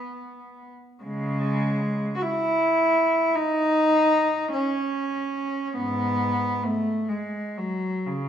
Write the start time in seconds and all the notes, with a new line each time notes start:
Already playing: B3
1.03 C#3 G#3
2.16 F#4
2.22 E4
3.35 D#4
4.52 C#4
5.76 G#2 B3
6.63 A3
7.08 G#3
7.57 F#3
8.07 C#3